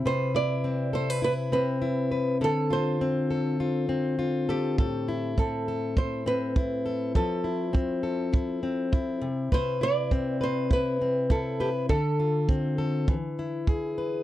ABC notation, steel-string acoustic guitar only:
X:1
M:4/4
L:1/16
Q:"Swing 16ths" 1/4=101
K:C
V:1 name="Steel-string acoustic guitar"
[C,B]2 E2 C2 A B E2 C2 E2 B2 | [D,A]2 F2 C2 A2 F2 C2 F2 A2 | [A,,A]2 E2 C2 A2 E2 C2 E2 A2 | [F,A]2 E2 C2 A2 E2 C2 E2 C,2 |
[C,B]2 E2 C2 B2 E2 C2 E2 B2 | [D,A]2 F2 C2 A2 E,2 E2 ^G2 B2 |]